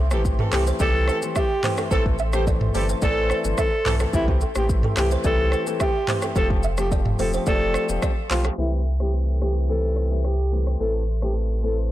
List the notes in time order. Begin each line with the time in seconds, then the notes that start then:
Already playing: C2 A4 E5 G5 C6
0.11 A1 E3 A3 C4 G4 A4, cross-stick, shaker
0.25 kick, shaker
0.39 E3 C4 A4, mid tom
0.52 C2 E3 A3 C4 G4 A4, cross-stick, clap, open hi-hat, shaker
0.67 C5, shaker
0.80 C2 E3 A3 C4 G4 A4 D5, kick, shaker
1.08 E3 C4 A4 C5, cross-stick, shaker
1.22 E3 A3 C4 G4, shaker
1.36 G4 E5, kick, cross-stick, shaker
1.63 E3 A3 C4 G4 C5, clap, mid tom, open hi-hat, shaker
1.77 A4, cross-stick, shaker
1.91 A1 E3 A3 C4 A4 C5, kick, shaker
2.06 kick
2.19 E5, shaker
2.33 E3 A3 C4 E4 G4 A4 C5, cross-stick, shaker
2.47 D5, kick, shaker
2.61 mid tom
2.74 G1 E3 G3 A3 C4 E4 G4 A4 C5, open hi-hat, shaker
2.89 C5, shaker
3.02 A1 E3 A3 C4 A4 D5, kick, shaker
3.30 C5, cross-stick, shaker
3.44 G1 E3 A3 C4 A4, shaker
3.58 A4 E5, kick, cross-stick, shaker
3.85 B1 E3 A3 C4 A4 C5, clap, mid tom, open hi-hat, shaker
4.00 A4, cross-stick, shaker
4.13 C2 E3 A3 C4 E4 G4 G5, kick, shaker
4.28 G4, kick
4.41 A4, shaker
4.55 A1 E3 A3 C4 G4, cross-stick, shaker
4.69 kick, shaker
4.83 A4, mid tom
4.97 C2 E3 A3 C4 G4, cross-stick, clap, open hi-hat, shaker
5.11 C5, shaker
5.24 C2 E3 A3 C4 G4 A4 D5, kick, shaker
5.52 C5, cross-stick, shaker
5.67 E3 A3 C4 G4, shaker
5.80 G4 E5, kick, cross-stick, shaker
6.08 E3 A3 C4 G4 C5, clap, mid tom, open hi-hat, shaker
6.22 A4, cross-stick, shaker
6.36 F1 F3 A3 C4 G4 A4 C5 F5, kick, shaker
6.50 kick
6.63 E5, shaker
6.77 F3 A3 C4 G4, cross-stick, shaker
6.92 D5, kick, shaker
7.05 mid tom
7.19 E1 F3 A3 C4 G4 A4 C5, open hi-hat, shaker
7.34 C5, shaker
7.46 F1 F3 A3 C4 G4 A4 D5, kick, shaker
7.74 C5, cross-stick, shaker
7.89 E1 F3 A3 C4 G4, shaker
8.02 D5, kick, cross-stick, shaker
8.30 B1 F3 A3 C4 F4 G4 C5, clap, open hi-hat, shaker
8.44 A4, cross-stick, shaker
8.58 C2 E3 A3 C4 E4 G4 A4 E5 G5 C6
9.00 E3 A3 C4 G4, cross-stick
9.41 E3 A3 C4 G4, cross-stick
9.69 E3 A3 C4 G4 A4
9.96 cross-stick
10.11 E3 A3 C4 G4
10.25 G4, cross-stick
10.52 E3 A3 C4 G4
10.67 cross-stick
10.80 A1 E3 A3 C4 A4 C5 E5
11.22 E3 A3 C4 G4 A4, cross-stick
11.63 E3 A3 C4 A4